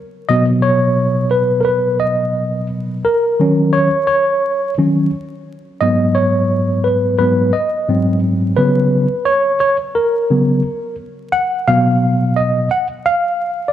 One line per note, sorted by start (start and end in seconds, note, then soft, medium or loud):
0.29 3.02 B2 medium
0.29 3.02 F#3 medium
0.29 3.02 B3 medium
0.29 0.45 D#5 loud
0.62 1.29 C#5 medium
1.31 1.62 B4 medium
1.61 1.67 A#4 medium
1.65 1.98 B4 medium
2.00 2.66 D#5 medium
3.05 3.76 A#4 medium
3.40 3.89 D#3 medium
3.40 3.89 F#3 soft
3.40 3.89 C#4 medium
3.73 4.06 C#5 loud
4.07 4.73 C#5 medium
4.78 5.09 D#3 soft
4.78 5.09 F#3 soft
4.78 5.10 C#4 medium
5.81 7.18 G#2 medium
5.81 7.18 F#3 soft
5.81 7.19 B3 medium
5.81 6.17 D#5 loud
6.15 6.87 C#5 medium
6.84 7.17 B4 medium
7.18 7.51 G#2 soft
7.18 7.51 F#3 soft
7.18 7.51 B3 medium
7.18 7.55 B4 medium
7.53 8.19 D#5 medium
7.88 8.54 G#2 medium
7.88 8.54 F#3 soft
7.88 8.55 C4 medium
8.57 9.06 C#3 medium
8.57 9.06 F#3 medium
8.57 9.07 B3 medium
8.57 9.28 B4 loud
9.25 9.58 C#5 loud
9.60 9.76 C#5 medium
9.95 10.95 A#4 medium
10.30 10.61 C#3 soft
10.30 10.62 F#3 soft
10.30 10.62 B3 medium
11.32 11.69 F#5 loud
11.67 12.67 B2 medium
11.67 12.68 F#3 soft
11.67 12.68 B3 medium
11.67 12.39 F5 medium
12.36 12.69 D#5 medium
12.71 12.87 F#5 loud
13.06 13.71 F5 loud
13.68 13.73 D5 medium